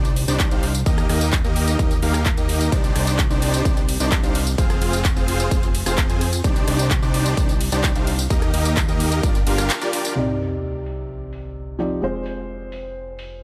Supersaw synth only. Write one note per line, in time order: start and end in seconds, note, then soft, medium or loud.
0.28 0.48 D4 medium
0.28 0.48 D#4 medium
0.28 0.48 G4 medium
0.28 0.48 C5 medium
0.28 0.48 D5 medium
0.51 0.65 D4 medium
0.51 0.65 D#4 medium
0.51 0.65 G4 medium
0.51 0.65 C5 medium
0.51 0.65 F5 loud
0.86 1.07 A#3 loud
0.86 1.07 D#4 medium
0.86 1.07 G4 medium
0.86 1.07 A#4 medium
0.86 1.07 D#5 loud
1.09 1.31 A#3 medium
1.09 1.31 D#4 medium
1.09 1.31 G4 medium
1.09 1.31 A#4 medium
1.09 1.31 D#5 medium
1.44 1.76 A#3 loud
1.44 1.76 D#4 medium
1.44 1.76 G4 medium
1.44 1.76 A#4 medium
1.44 1.76 D#5 loud
1.79 1.93 A#3 medium
1.79 1.93 D#4 medium
1.79 1.93 A#4 medium
2.02 2.24 A#3 loud
2.02 2.24 D#4 medium
2.02 2.24 G4 medium
2.02 2.24 A#4 medium
2.02 2.24 F5 loud
2.37 2.69 A#3 medium
2.37 2.69 D#4 medium
2.37 2.69 G4 medium
2.37 2.69 A#4 medium
2.37 2.69 D#5 medium
2.72 2.93 D4 loud
2.72 2.93 D#4 medium
2.72 2.93 G4 medium
2.72 2.93 C5 medium
2.72 2.93 D5 loud
2.95 3.17 D4 medium
2.95 3.17 D#4 medium
2.95 3.17 G4 medium
2.95 3.17 C5 medium
2.95 3.17 D5 medium
3.30 3.62 D4 loud
3.30 3.62 D#4 medium
3.30 3.62 G4 medium
3.30 3.62 C5 medium
3.30 3.62 D5 loud
3.65 3.79 D4 medium
3.65 3.79 D#4 medium
3.65 3.79 G4 medium
3.65 3.79 C5 medium
4.00 4.20 D4 medium
4.00 4.20 D#4 medium
4.00 4.20 G4 medium
4.00 4.20 C5 medium
4.00 4.20 D5 medium
4.23 4.37 D4 medium
4.23 4.37 D#4 medium
4.23 4.37 G4 medium
4.23 4.37 C5 medium
4.23 4.37 F5 loud
4.58 4.79 C4 loud
4.58 4.79 F4 medium
4.58 4.79 G#4 medium
4.58 4.79 C5 medium
4.58 4.79 F5 loud
4.82 5.03 C4 medium
4.82 5.03 F4 medium
4.82 5.03 G#4 medium
4.82 5.03 C5 medium
4.82 5.03 F5 medium
5.16 5.49 C4 loud
5.16 5.49 F4 medium
5.16 5.49 G#4 medium
5.16 5.49 C5 medium
5.16 5.49 F5 loud
5.51 5.65 C4 medium
5.51 5.65 F4 medium
5.51 5.65 G#4 medium
5.51 5.65 C5 medium
5.51 5.65 F5 loud
5.86 6.06 C4 medium
5.86 6.06 F4 medium
5.86 6.06 G#4 medium
5.86 6.06 C5 medium
5.86 6.06 F5 medium
6.09 6.23 C4 medium
6.09 6.23 F4 medium
6.09 6.23 G#4 medium
6.09 6.23 C5 medium
6.09 6.23 G#5 loud
6.44 6.65 D4 loud
6.44 6.65 D#4 medium
6.44 6.65 G4 medium
6.44 6.65 C5 medium
6.44 6.65 D5 loud
6.68 6.89 D4 medium
6.68 6.89 D#4 medium
6.68 6.89 G4 medium
6.68 6.89 C5 medium
6.68 6.89 D5 medium
7.02 7.35 D4 medium
7.02 7.35 D#4 medium
7.02 7.35 G4 medium
7.02 7.35 C5 medium
7.02 7.35 D5 loud
7.37 7.51 D4 medium
7.37 7.51 D#4 medium
7.37 7.51 G4 medium
7.37 7.51 D5 loud
7.72 7.92 D4 medium
7.72 7.92 D#4 medium
7.72 7.92 G4 medium
7.72 7.92 C5 medium
7.72 7.92 D5 medium
7.96 8.09 D4 medium
7.96 8.09 D#4 medium
7.96 8.09 G4 medium
7.96 8.09 C5 medium
7.96 8.09 F5 loud
8.30 8.51 A#3 loud
8.30 8.51 D#4 medium
8.30 8.51 G4 medium
8.30 8.51 A#4 medium
8.30 8.51 D#5 loud
8.54 8.75 A#3 medium
8.54 8.75 D#4 medium
8.54 8.75 G4 medium
8.54 8.75 A#4 medium
8.54 8.75 D#5 medium
8.89 9.21 A#3 medium
8.89 9.21 D#4 medium
8.89 9.21 G4 medium
8.89 9.21 A#4 medium
8.89 9.21 D#5 loud
9.23 9.37 D4 medium
9.23 9.37 G4 medium
9.23 9.37 A#4 medium
9.23 9.37 D5 loud
9.47 9.68 D4 loud
9.47 9.68 F4 medium
9.47 9.68 G4 medium
9.47 9.68 A#4 medium
9.47 9.68 F5 loud
9.82 10.14 D4 medium
9.82 10.14 F4 medium
9.82 10.14 G4 medium
9.82 10.14 A#4 medium
9.82 10.14 D5 medium